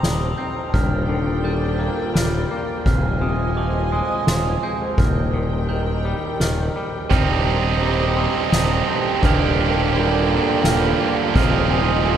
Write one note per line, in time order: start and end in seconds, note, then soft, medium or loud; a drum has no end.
0.00 0.32 D#1 medium
0.00 0.38 C3 medium
0.00 0.37 C4 medium
0.00 0.71 D4 medium
0.00 0.71 D#4 medium
0.00 0.71 C5 medium
0.00 0.71 A#5 medium
0.00 0.38 D#6 medium
0.00 snare medium
0.00 ride soft
0.04 0.74 G3 medium
0.37 0.74 C4 soft
0.37 0.73 G6 medium
0.37 ride medium
0.74 1.88 D#1 medium
0.74 2.50 G2 medium
0.74 4.94 F4 medium
0.74 2.84 A#4 medium
0.74 2.84 D5 medium
0.74 2.83 G5 medium
0.74 1.44 F6 medium
0.74 kick medium
0.74 ride soft
1.09 2.85 D3 medium
1.44 2.13 G3 medium
1.44 2.15 G6 medium
1.44 ride medium
1.79 2.50 A#3 medium
2.14 2.44 D#1 medium
2.14 2.85 G3 medium
2.14 2.85 F6 medium
2.14 snare medium
2.14 ride medium
2.51 2.86 A#3 soft
2.86 4.01 D#1 medium
2.86 4.63 F2 medium
2.86 4.96 C5 medium
2.86 4.96 D#5 medium
2.86 4.96 G#5 medium
2.86 3.21 F6 medium
2.86 kick medium
2.86 ride soft
3.22 4.98 C3 medium
3.22 3.57 D#6 medium
3.56 4.27 F3 medium
3.56 3.92 D6 medium
3.56 ride medium
3.92 4.62 G#3 medium
3.92 4.27 D#6 medium
4.27 4.56 D#1 medium
4.27 4.98 F3 medium
4.27 4.63 D#6 medium
4.27 snare medium
4.27 ride soft
4.62 4.98 G#3 medium
4.62 4.98 G6 medium
4.62 ride medium
4.98 6.13 D#1 medium
4.98 6.75 D#2 medium
4.98 7.09 D#4 medium
4.98 7.09 A#4 medium
4.98 7.09 G5 medium
4.98 5.69 F6 medium
4.98 kick medium
4.98 ride soft
5.34 7.10 A#2 medium
5.69 6.39 D#3 soft
5.69 6.39 G6 medium
5.69 ride medium
6.05 6.75 G3 medium
6.40 6.69 D#1 medium
6.40 7.11 D#3 medium
6.40 7.10 F6 medium
6.40 snare medium
6.40 ride soft
6.76 7.47 G3 medium
7.10 8.26 D#1 medium
7.10 9.20 C3 medium
7.10 8.87 C3 medium
7.10 9.21 G3 medium
7.10 9.22 C4 medium
7.10 9.22 D4 medium
7.10 9.21 C5 medium
7.10 9.21 A#5 medium
7.10 7.46 F6 medium
7.10 kick medium
7.10 ride soft
7.14 9.23 D#4 medium
7.47 7.80 G3 medium
7.47 7.81 D#6 medium
7.82 8.51 G3 medium
7.82 8.17 D6 medium
7.82 ride medium
8.17 8.86 C4 medium
8.17 8.52 D#6 medium
8.52 8.81 D#1 medium
8.52 9.23 G3 medium
8.52 8.88 D#6 medium
8.52 snare medium
8.52 ride medium
8.87 9.23 C4 soft
8.87 9.24 G6 medium
8.87 ride medium
9.21 10.38 D#1 medium
9.21 11.00 G2 medium
9.21 11.33 G2 medium
9.21 11.34 D3 medium
9.21 11.34 G3 medium
9.21 12.17 F4 medium
9.21 11.33 A#4 medium
9.21 11.33 D5 medium
9.21 11.32 G5 medium
9.21 9.94 F6 medium
9.21 kick medium
9.21 ride medium
9.25 11.34 A#3 medium
9.25 11.34 D4 medium
9.25 11.35 G4 medium
9.59 11.36 D3 medium
9.94 10.63 G3 medium
9.94 10.65 G6 medium
9.94 ride medium
10.29 10.99 A#3 medium
10.64 10.93 D#1 medium
10.64 11.35 G3 medium
10.64 11.35 F6 medium
10.64 snare medium
10.64 ride medium
11.00 11.35 A#3 medium
11.34 12.17 D#1 medium
11.34 12.17 F2 medium
11.34 12.17 C3 medium
11.34 12.17 F3 medium
11.34 12.17 G#3 medium
11.34 12.17 C4 medium
11.34 12.17 D#4 medium
11.34 12.17 C5 medium
11.34 12.17 D#5 medium
11.34 12.17 G#5 medium
11.34 11.71 F6 medium
11.34 kick medium
11.34 ride medium
11.71 12.17 C3 medium
11.71 12.06 D#6 medium
12.06 12.17 F3 medium
12.06 12.17 D6 medium
12.06 ride medium